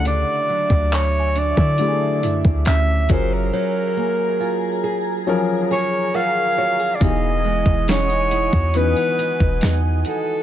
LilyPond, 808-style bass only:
\new Staff \with { instrumentName = "808-style bass" } { \clef bass \time 4/4 \key fis \dorian \tempo 4 = 69 d,16 r8 d,4 d8. fis,16 d,16 d,8 fis,,8 | r1 | e,,8. e,,4 e,8 r8 e,,16 e,8 r8 | }